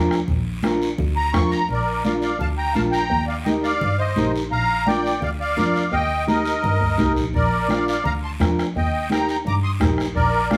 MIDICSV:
0, 0, Header, 1, 6, 480
1, 0, Start_track
1, 0, Key_signature, -2, "major"
1, 0, Tempo, 352734
1, 391, Time_signature, 4, 2, 24, 8
1, 14385, End_track
2, 0, Start_track
2, 0, Title_t, "Accordion"
2, 0, Program_c, 0, 21
2, 1582, Note_on_c, 0, 82, 91
2, 1809, Note_on_c, 0, 85, 92
2, 1818, Note_off_c, 0, 82, 0
2, 2048, Note_on_c, 0, 82, 92
2, 2051, Note_off_c, 0, 85, 0
2, 2291, Note_off_c, 0, 82, 0
2, 2325, Note_on_c, 0, 70, 66
2, 2350, Note_on_c, 0, 74, 76
2, 2760, Note_off_c, 0, 74, 0
2, 2763, Note_off_c, 0, 70, 0
2, 2781, Note_on_c, 0, 74, 60
2, 2802, Note_on_c, 0, 77, 76
2, 2890, Note_off_c, 0, 74, 0
2, 2907, Note_off_c, 0, 77, 0
2, 3014, Note_on_c, 0, 74, 61
2, 3037, Note_on_c, 0, 77, 77
2, 3234, Note_off_c, 0, 77, 0
2, 3243, Note_off_c, 0, 74, 0
2, 3255, Note_on_c, 0, 77, 60
2, 3272, Note_on_c, 0, 81, 83
2, 3366, Note_off_c, 0, 77, 0
2, 3379, Note_off_c, 0, 81, 0
2, 3500, Note_on_c, 0, 79, 63
2, 3511, Note_on_c, 0, 82, 86
2, 3725, Note_on_c, 0, 77, 72
2, 3727, Note_off_c, 0, 79, 0
2, 3732, Note_off_c, 0, 82, 0
2, 3742, Note_on_c, 0, 81, 82
2, 3838, Note_off_c, 0, 77, 0
2, 3851, Note_off_c, 0, 81, 0
2, 3967, Note_on_c, 0, 79, 74
2, 3980, Note_on_c, 0, 82, 93
2, 4423, Note_off_c, 0, 79, 0
2, 4430, Note_off_c, 0, 82, 0
2, 4451, Note_on_c, 0, 74, 59
2, 4467, Note_on_c, 0, 77, 82
2, 4563, Note_off_c, 0, 74, 0
2, 4575, Note_off_c, 0, 77, 0
2, 4683, Note_on_c, 0, 75, 64
2, 4694, Note_on_c, 0, 79, 80
2, 4796, Note_off_c, 0, 75, 0
2, 4805, Note_off_c, 0, 79, 0
2, 4937, Note_on_c, 0, 74, 65
2, 4942, Note_on_c, 0, 77, 94
2, 5388, Note_off_c, 0, 74, 0
2, 5426, Note_on_c, 0, 72, 62
2, 5431, Note_on_c, 0, 75, 76
2, 5439, Note_off_c, 0, 77, 0
2, 5873, Note_off_c, 0, 72, 0
2, 5876, Note_off_c, 0, 75, 0
2, 6147, Note_on_c, 0, 77, 76
2, 6148, Note_on_c, 0, 82, 100
2, 6594, Note_off_c, 0, 77, 0
2, 6625, Note_on_c, 0, 79, 90
2, 6628, Note_on_c, 0, 74, 65
2, 6642, Note_off_c, 0, 82, 0
2, 7074, Note_off_c, 0, 74, 0
2, 7104, Note_on_c, 0, 74, 63
2, 7105, Note_on_c, 0, 77, 83
2, 7121, Note_off_c, 0, 79, 0
2, 7213, Note_off_c, 0, 74, 0
2, 7214, Note_off_c, 0, 77, 0
2, 7349, Note_on_c, 0, 74, 72
2, 7356, Note_on_c, 0, 77, 91
2, 8018, Note_off_c, 0, 74, 0
2, 8062, Note_on_c, 0, 79, 94
2, 8064, Note_on_c, 0, 75, 73
2, 8093, Note_off_c, 0, 77, 0
2, 8511, Note_off_c, 0, 79, 0
2, 8512, Note_off_c, 0, 75, 0
2, 8549, Note_on_c, 0, 75, 86
2, 8551, Note_on_c, 0, 70, 70
2, 9694, Note_off_c, 0, 75, 0
2, 9695, Note_off_c, 0, 70, 0
2, 9998, Note_on_c, 0, 70, 75
2, 9998, Note_on_c, 0, 74, 90
2, 10440, Note_off_c, 0, 70, 0
2, 10468, Note_off_c, 0, 74, 0
2, 10480, Note_on_c, 0, 77, 88
2, 10488, Note_on_c, 0, 74, 64
2, 10691, Note_off_c, 0, 77, 0
2, 10702, Note_off_c, 0, 74, 0
2, 10712, Note_on_c, 0, 77, 89
2, 10732, Note_on_c, 0, 74, 65
2, 10933, Note_off_c, 0, 77, 0
2, 10944, Note_off_c, 0, 74, 0
2, 10949, Note_on_c, 0, 82, 95
2, 10960, Note_on_c, 0, 77, 68
2, 11057, Note_off_c, 0, 82, 0
2, 11066, Note_off_c, 0, 77, 0
2, 11200, Note_on_c, 0, 84, 77
2, 11222, Note_on_c, 0, 81, 71
2, 11305, Note_off_c, 0, 84, 0
2, 11323, Note_off_c, 0, 81, 0
2, 11928, Note_on_c, 0, 75, 63
2, 11931, Note_on_c, 0, 79, 86
2, 12365, Note_off_c, 0, 75, 0
2, 12378, Note_off_c, 0, 79, 0
2, 12399, Note_on_c, 0, 79, 64
2, 12417, Note_on_c, 0, 82, 88
2, 12617, Note_off_c, 0, 79, 0
2, 12634, Note_off_c, 0, 82, 0
2, 12650, Note_on_c, 0, 79, 64
2, 12654, Note_on_c, 0, 82, 85
2, 12753, Note_off_c, 0, 79, 0
2, 12756, Note_off_c, 0, 82, 0
2, 12885, Note_on_c, 0, 82, 71
2, 12899, Note_on_c, 0, 86, 90
2, 12989, Note_off_c, 0, 82, 0
2, 13000, Note_off_c, 0, 86, 0
2, 13103, Note_on_c, 0, 84, 66
2, 13118, Note_on_c, 0, 87, 87
2, 13212, Note_off_c, 0, 84, 0
2, 13223, Note_off_c, 0, 87, 0
2, 13821, Note_on_c, 0, 70, 75
2, 13826, Note_on_c, 0, 74, 93
2, 14270, Note_off_c, 0, 70, 0
2, 14295, Note_off_c, 0, 74, 0
2, 14312, Note_on_c, 0, 77, 84
2, 14315, Note_on_c, 0, 74, 68
2, 14385, Note_off_c, 0, 74, 0
2, 14385, Note_off_c, 0, 77, 0
2, 14385, End_track
3, 0, Start_track
3, 0, Title_t, "Clean electric guitar"
3, 0, Program_c, 1, 27
3, 0, Note_on_c, 1, 62, 92
3, 0, Note_on_c, 1, 65, 88
3, 0, Note_on_c, 1, 70, 105
3, 243, Note_off_c, 1, 62, 0
3, 249, Note_off_c, 1, 65, 0
3, 249, Note_off_c, 1, 70, 0
3, 866, Note_on_c, 1, 62, 88
3, 874, Note_on_c, 1, 65, 76
3, 878, Note_on_c, 1, 70, 92
3, 1204, Note_off_c, 1, 62, 0
3, 1205, Note_off_c, 1, 65, 0
3, 1210, Note_off_c, 1, 70, 0
3, 1817, Note_on_c, 1, 62, 79
3, 1824, Note_on_c, 1, 65, 69
3, 1830, Note_on_c, 1, 70, 82
3, 2159, Note_off_c, 1, 62, 0
3, 2162, Note_off_c, 1, 65, 0
3, 2164, Note_off_c, 1, 70, 0
3, 2796, Note_on_c, 1, 62, 67
3, 2804, Note_on_c, 1, 65, 65
3, 2810, Note_on_c, 1, 70, 73
3, 3128, Note_off_c, 1, 62, 0
3, 3132, Note_off_c, 1, 65, 0
3, 3134, Note_off_c, 1, 70, 0
3, 3745, Note_on_c, 1, 62, 71
3, 3756, Note_on_c, 1, 65, 70
3, 3761, Note_on_c, 1, 70, 74
3, 4083, Note_off_c, 1, 62, 0
3, 4085, Note_off_c, 1, 65, 0
3, 4090, Note_off_c, 1, 70, 0
3, 4708, Note_on_c, 1, 63, 76
3, 4717, Note_on_c, 1, 67, 67
3, 4720, Note_on_c, 1, 70, 83
3, 5044, Note_off_c, 1, 63, 0
3, 5049, Note_off_c, 1, 67, 0
3, 5049, Note_off_c, 1, 70, 0
3, 5672, Note_on_c, 1, 63, 77
3, 5680, Note_on_c, 1, 67, 66
3, 5687, Note_on_c, 1, 70, 84
3, 6006, Note_off_c, 1, 63, 0
3, 6010, Note_off_c, 1, 67, 0
3, 6013, Note_off_c, 1, 70, 0
3, 6635, Note_on_c, 1, 62, 66
3, 6642, Note_on_c, 1, 65, 62
3, 6647, Note_on_c, 1, 70, 81
3, 6968, Note_off_c, 1, 62, 0
3, 6969, Note_off_c, 1, 65, 0
3, 6973, Note_off_c, 1, 70, 0
3, 7578, Note_on_c, 1, 62, 73
3, 7585, Note_on_c, 1, 65, 62
3, 7587, Note_on_c, 1, 70, 83
3, 7920, Note_off_c, 1, 62, 0
3, 7922, Note_off_c, 1, 65, 0
3, 7924, Note_off_c, 1, 70, 0
3, 8536, Note_on_c, 1, 63, 66
3, 8538, Note_on_c, 1, 67, 65
3, 8546, Note_on_c, 1, 70, 80
3, 8878, Note_off_c, 1, 67, 0
3, 8879, Note_off_c, 1, 63, 0
3, 8879, Note_off_c, 1, 70, 0
3, 9499, Note_on_c, 1, 63, 89
3, 9499, Note_on_c, 1, 67, 77
3, 9511, Note_on_c, 1, 70, 100
3, 9838, Note_off_c, 1, 67, 0
3, 9840, Note_off_c, 1, 63, 0
3, 9845, Note_off_c, 1, 70, 0
3, 10456, Note_on_c, 1, 62, 71
3, 10468, Note_on_c, 1, 65, 62
3, 10476, Note_on_c, 1, 70, 78
3, 10798, Note_off_c, 1, 62, 0
3, 10804, Note_off_c, 1, 65, 0
3, 10808, Note_off_c, 1, 70, 0
3, 11429, Note_on_c, 1, 65, 70
3, 11434, Note_on_c, 1, 62, 77
3, 11440, Note_on_c, 1, 70, 84
3, 11764, Note_off_c, 1, 65, 0
3, 11767, Note_off_c, 1, 62, 0
3, 11770, Note_off_c, 1, 70, 0
3, 12391, Note_on_c, 1, 63, 71
3, 12397, Note_on_c, 1, 67, 64
3, 12408, Note_on_c, 1, 70, 70
3, 12725, Note_off_c, 1, 63, 0
3, 12729, Note_off_c, 1, 67, 0
3, 12732, Note_off_c, 1, 70, 0
3, 13336, Note_on_c, 1, 63, 74
3, 13349, Note_on_c, 1, 67, 66
3, 13356, Note_on_c, 1, 70, 77
3, 13678, Note_off_c, 1, 63, 0
3, 13684, Note_off_c, 1, 67, 0
3, 13688, Note_off_c, 1, 70, 0
3, 14297, Note_on_c, 1, 62, 73
3, 14303, Note_on_c, 1, 65, 68
3, 14311, Note_on_c, 1, 70, 74
3, 14385, Note_off_c, 1, 62, 0
3, 14385, Note_off_c, 1, 65, 0
3, 14385, Note_off_c, 1, 70, 0
3, 14385, End_track
4, 0, Start_track
4, 0, Title_t, "Double bass"
4, 0, Program_c, 2, 43
4, 0, Note_on_c, 2, 41, 86
4, 292, Note_off_c, 2, 41, 0
4, 388, Note_on_c, 2, 34, 100
4, 1156, Note_off_c, 2, 34, 0
4, 1338, Note_on_c, 2, 38, 99
4, 1726, Note_off_c, 2, 38, 0
4, 1826, Note_on_c, 2, 41, 89
4, 2211, Note_off_c, 2, 41, 0
4, 2298, Note_on_c, 2, 34, 97
4, 3070, Note_off_c, 2, 34, 0
4, 3257, Note_on_c, 2, 38, 93
4, 3645, Note_off_c, 2, 38, 0
4, 3744, Note_on_c, 2, 34, 84
4, 4129, Note_off_c, 2, 34, 0
4, 4220, Note_on_c, 2, 39, 100
4, 4991, Note_off_c, 2, 39, 0
4, 5185, Note_on_c, 2, 43, 96
4, 5570, Note_off_c, 2, 43, 0
4, 5669, Note_on_c, 2, 34, 86
4, 6053, Note_off_c, 2, 34, 0
4, 6143, Note_on_c, 2, 34, 101
4, 6913, Note_off_c, 2, 34, 0
4, 7091, Note_on_c, 2, 38, 88
4, 7482, Note_off_c, 2, 38, 0
4, 7578, Note_on_c, 2, 41, 87
4, 7966, Note_off_c, 2, 41, 0
4, 8056, Note_on_c, 2, 39, 105
4, 8829, Note_off_c, 2, 39, 0
4, 9020, Note_on_c, 2, 43, 93
4, 9215, Note_off_c, 2, 43, 0
4, 9263, Note_on_c, 2, 38, 86
4, 9481, Note_off_c, 2, 38, 0
4, 9499, Note_on_c, 2, 36, 74
4, 9719, Note_off_c, 2, 36, 0
4, 9747, Note_on_c, 2, 34, 79
4, 9963, Note_off_c, 2, 34, 0
4, 9989, Note_on_c, 2, 34, 101
4, 10756, Note_off_c, 2, 34, 0
4, 10945, Note_on_c, 2, 38, 86
4, 11330, Note_off_c, 2, 38, 0
4, 11437, Note_on_c, 2, 41, 82
4, 11817, Note_off_c, 2, 41, 0
4, 11925, Note_on_c, 2, 39, 99
4, 12686, Note_off_c, 2, 39, 0
4, 12865, Note_on_c, 2, 43, 96
4, 13250, Note_off_c, 2, 43, 0
4, 13346, Note_on_c, 2, 34, 89
4, 13731, Note_off_c, 2, 34, 0
4, 13819, Note_on_c, 2, 34, 104
4, 14385, Note_off_c, 2, 34, 0
4, 14385, End_track
5, 0, Start_track
5, 0, Title_t, "Two-headed folk drums"
5, 151, Note_on_c, 9, 37, 75
5, 287, Note_off_c, 9, 37, 0
5, 388, Note_on_c, 9, 36, 78
5, 524, Note_off_c, 9, 36, 0
5, 868, Note_on_c, 9, 37, 79
5, 1004, Note_off_c, 9, 37, 0
5, 1826, Note_on_c, 9, 36, 91
5, 1826, Note_on_c, 9, 37, 93
5, 1962, Note_off_c, 9, 36, 0
5, 1962, Note_off_c, 9, 37, 0
5, 9993, Note_on_c, 9, 36, 75
5, 10129, Note_off_c, 9, 36, 0
5, 10486, Note_on_c, 9, 37, 78
5, 10622, Note_off_c, 9, 37, 0
5, 11439, Note_on_c, 9, 36, 87
5, 11450, Note_on_c, 9, 37, 93
5, 11575, Note_off_c, 9, 36, 0
5, 11586, Note_off_c, 9, 37, 0
5, 11695, Note_on_c, 9, 37, 77
5, 11831, Note_off_c, 9, 37, 0
5, 11925, Note_on_c, 9, 36, 79
5, 12061, Note_off_c, 9, 36, 0
5, 12415, Note_on_c, 9, 37, 73
5, 12551, Note_off_c, 9, 37, 0
5, 13347, Note_on_c, 9, 37, 85
5, 13350, Note_on_c, 9, 36, 88
5, 13483, Note_off_c, 9, 37, 0
5, 13486, Note_off_c, 9, 36, 0
5, 13581, Note_on_c, 9, 37, 75
5, 13717, Note_off_c, 9, 37, 0
5, 13822, Note_on_c, 9, 36, 74
5, 13958, Note_off_c, 9, 36, 0
5, 14300, Note_on_c, 9, 37, 80
5, 14385, Note_off_c, 9, 37, 0
5, 14385, End_track
6, 0, Start_track
6, 0, Title_t, "Drums"
6, 164, Note_on_c, 9, 73, 68
6, 300, Note_off_c, 9, 73, 0
6, 379, Note_on_c, 9, 63, 36
6, 379, Note_on_c, 9, 64, 71
6, 407, Note_on_c, 9, 74, 66
6, 515, Note_off_c, 9, 63, 0
6, 515, Note_off_c, 9, 64, 0
6, 544, Note_off_c, 9, 74, 0
6, 855, Note_on_c, 9, 63, 88
6, 881, Note_on_c, 9, 73, 59
6, 991, Note_off_c, 9, 63, 0
6, 1017, Note_off_c, 9, 73, 0
6, 1113, Note_on_c, 9, 73, 74
6, 1249, Note_off_c, 9, 73, 0
6, 1338, Note_on_c, 9, 63, 35
6, 1338, Note_on_c, 9, 64, 81
6, 1359, Note_on_c, 9, 74, 68
6, 1475, Note_off_c, 9, 63, 0
6, 1475, Note_off_c, 9, 64, 0
6, 1495, Note_off_c, 9, 74, 0
6, 1823, Note_on_c, 9, 63, 79
6, 1828, Note_on_c, 9, 73, 68
6, 1960, Note_off_c, 9, 63, 0
6, 1964, Note_off_c, 9, 73, 0
6, 2061, Note_on_c, 9, 73, 71
6, 2198, Note_off_c, 9, 73, 0
6, 2296, Note_on_c, 9, 74, 67
6, 2316, Note_on_c, 9, 63, 35
6, 2432, Note_off_c, 9, 74, 0
6, 2452, Note_off_c, 9, 63, 0
6, 2782, Note_on_c, 9, 73, 65
6, 2786, Note_on_c, 9, 63, 82
6, 2918, Note_off_c, 9, 73, 0
6, 2922, Note_off_c, 9, 63, 0
6, 3018, Note_on_c, 9, 73, 73
6, 3154, Note_off_c, 9, 73, 0
6, 3264, Note_on_c, 9, 74, 70
6, 3275, Note_on_c, 9, 63, 31
6, 3275, Note_on_c, 9, 64, 70
6, 3400, Note_off_c, 9, 74, 0
6, 3411, Note_off_c, 9, 63, 0
6, 3411, Note_off_c, 9, 64, 0
6, 3744, Note_on_c, 9, 73, 66
6, 3756, Note_on_c, 9, 63, 74
6, 3880, Note_off_c, 9, 73, 0
6, 3892, Note_off_c, 9, 63, 0
6, 3990, Note_on_c, 9, 73, 70
6, 4126, Note_off_c, 9, 73, 0
6, 4232, Note_on_c, 9, 74, 66
6, 4237, Note_on_c, 9, 63, 36
6, 4368, Note_off_c, 9, 74, 0
6, 4373, Note_off_c, 9, 63, 0
6, 4712, Note_on_c, 9, 73, 68
6, 4713, Note_on_c, 9, 63, 88
6, 4848, Note_off_c, 9, 73, 0
6, 4849, Note_off_c, 9, 63, 0
6, 4955, Note_on_c, 9, 73, 73
6, 5091, Note_off_c, 9, 73, 0
6, 5189, Note_on_c, 9, 63, 33
6, 5189, Note_on_c, 9, 64, 79
6, 5195, Note_on_c, 9, 74, 64
6, 5325, Note_off_c, 9, 63, 0
6, 5325, Note_off_c, 9, 64, 0
6, 5331, Note_off_c, 9, 74, 0
6, 5663, Note_on_c, 9, 63, 79
6, 5674, Note_on_c, 9, 73, 70
6, 5799, Note_off_c, 9, 63, 0
6, 5810, Note_off_c, 9, 73, 0
6, 5927, Note_on_c, 9, 73, 67
6, 6063, Note_off_c, 9, 73, 0
6, 6148, Note_on_c, 9, 63, 34
6, 6171, Note_on_c, 9, 74, 68
6, 6284, Note_off_c, 9, 63, 0
6, 6307, Note_off_c, 9, 74, 0
6, 6624, Note_on_c, 9, 63, 82
6, 6651, Note_on_c, 9, 73, 69
6, 6760, Note_off_c, 9, 63, 0
6, 6787, Note_off_c, 9, 73, 0
6, 6886, Note_on_c, 9, 73, 72
6, 7023, Note_off_c, 9, 73, 0
6, 7105, Note_on_c, 9, 63, 32
6, 7105, Note_on_c, 9, 64, 76
6, 7134, Note_on_c, 9, 74, 67
6, 7241, Note_off_c, 9, 63, 0
6, 7241, Note_off_c, 9, 64, 0
6, 7270, Note_off_c, 9, 74, 0
6, 7591, Note_on_c, 9, 63, 79
6, 7602, Note_on_c, 9, 73, 65
6, 7727, Note_off_c, 9, 63, 0
6, 7738, Note_off_c, 9, 73, 0
6, 7833, Note_on_c, 9, 73, 68
6, 7969, Note_off_c, 9, 73, 0
6, 8070, Note_on_c, 9, 74, 60
6, 8073, Note_on_c, 9, 63, 34
6, 8206, Note_off_c, 9, 74, 0
6, 8209, Note_off_c, 9, 63, 0
6, 8551, Note_on_c, 9, 63, 81
6, 8552, Note_on_c, 9, 73, 65
6, 8687, Note_off_c, 9, 63, 0
6, 8688, Note_off_c, 9, 73, 0
6, 8782, Note_on_c, 9, 73, 81
6, 8919, Note_off_c, 9, 73, 0
6, 9024, Note_on_c, 9, 74, 66
6, 9035, Note_on_c, 9, 63, 33
6, 9035, Note_on_c, 9, 64, 77
6, 9160, Note_off_c, 9, 74, 0
6, 9172, Note_off_c, 9, 63, 0
6, 9172, Note_off_c, 9, 64, 0
6, 9502, Note_on_c, 9, 73, 70
6, 9509, Note_on_c, 9, 63, 84
6, 9638, Note_off_c, 9, 73, 0
6, 9645, Note_off_c, 9, 63, 0
6, 9750, Note_on_c, 9, 73, 67
6, 9886, Note_off_c, 9, 73, 0
6, 9990, Note_on_c, 9, 74, 66
6, 9995, Note_on_c, 9, 63, 35
6, 10126, Note_off_c, 9, 74, 0
6, 10131, Note_off_c, 9, 63, 0
6, 10469, Note_on_c, 9, 63, 77
6, 10478, Note_on_c, 9, 73, 60
6, 10606, Note_off_c, 9, 63, 0
6, 10614, Note_off_c, 9, 73, 0
6, 10727, Note_on_c, 9, 73, 80
6, 10863, Note_off_c, 9, 73, 0
6, 10960, Note_on_c, 9, 63, 31
6, 10960, Note_on_c, 9, 64, 78
6, 10968, Note_on_c, 9, 74, 66
6, 11096, Note_off_c, 9, 63, 0
6, 11096, Note_off_c, 9, 64, 0
6, 11105, Note_off_c, 9, 74, 0
6, 11432, Note_on_c, 9, 63, 82
6, 11442, Note_on_c, 9, 73, 64
6, 11568, Note_off_c, 9, 63, 0
6, 11578, Note_off_c, 9, 73, 0
6, 11688, Note_on_c, 9, 73, 65
6, 11824, Note_off_c, 9, 73, 0
6, 11909, Note_on_c, 9, 63, 35
6, 11931, Note_on_c, 9, 74, 67
6, 12045, Note_off_c, 9, 63, 0
6, 12068, Note_off_c, 9, 74, 0
6, 12382, Note_on_c, 9, 63, 81
6, 12412, Note_on_c, 9, 73, 68
6, 12518, Note_off_c, 9, 63, 0
6, 12548, Note_off_c, 9, 73, 0
6, 12637, Note_on_c, 9, 73, 76
6, 12773, Note_off_c, 9, 73, 0
6, 12880, Note_on_c, 9, 74, 73
6, 12885, Note_on_c, 9, 63, 32
6, 12885, Note_on_c, 9, 64, 71
6, 13016, Note_off_c, 9, 74, 0
6, 13021, Note_off_c, 9, 63, 0
6, 13021, Note_off_c, 9, 64, 0
6, 13350, Note_on_c, 9, 63, 76
6, 13355, Note_on_c, 9, 73, 63
6, 13486, Note_off_c, 9, 63, 0
6, 13491, Note_off_c, 9, 73, 0
6, 13612, Note_on_c, 9, 73, 67
6, 13748, Note_off_c, 9, 73, 0
6, 13820, Note_on_c, 9, 63, 33
6, 13844, Note_on_c, 9, 74, 69
6, 13956, Note_off_c, 9, 63, 0
6, 13980, Note_off_c, 9, 74, 0
6, 14302, Note_on_c, 9, 63, 85
6, 14321, Note_on_c, 9, 73, 63
6, 14385, Note_off_c, 9, 63, 0
6, 14385, Note_off_c, 9, 73, 0
6, 14385, End_track
0, 0, End_of_file